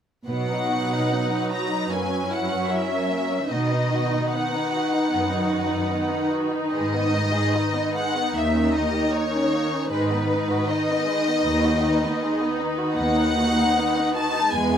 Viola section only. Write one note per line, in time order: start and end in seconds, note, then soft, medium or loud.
0.29 3.48 F#3 soft
0.29 1.87 D#4 soft
1.90 3.51 C#4 soft
3.51 9.87 D#3 soft
3.51 9.87 D#4 soft
9.92 14.51 D#3 soft
9.92 14.51 D#4 soft
14.56 14.78 G#3 soft
14.56 14.78 B3 soft